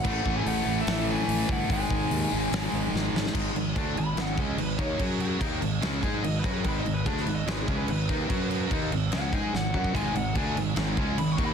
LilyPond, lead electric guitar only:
\new Staff \with { instrumentName = "Lead electric guitar" } { \time 4/4 \key gis \phrygian \tempo 4 = 146 fis''8. gis''16 fis''8. e''8. gis''4 fis''8 | gis''2. r4 | r4. b''8 fis''8 dis''8 b'8 cis''8 | gis'8 gis'8 r2 \tuplet 3/2 { dis''8 b'8 gis'8 } |
\tuplet 3/2 { b'8 dis''8 b'8 gis'8 b'8 dis''8 b'8 gis'8 b'8 } b'4~ | b'4 r4 fis''8 gis''8 fis''8 fis''8 | gis''8 fis''8 gis''8 r4. \tuplet 3/2 { b''8 cis'''8 b''8 } | }